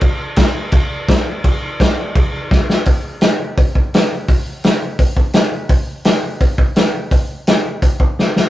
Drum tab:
CC |x-x-x-x-|x-x-x---|--------|--------|
HH |--------|--------|o-o-o-o-|o-o-o-o-|
SD |--o---o-|--o---oo|--o---o-|--o---o-|
BD |o-o-o-o-|o-o-o-o-|o---oo--|o---oo--|

CC |--------|--------|
HH |o-o-o-o-|o-o-o---|
SD |--o---o-|--o---oo|
BD |o---oo--|o---oo--|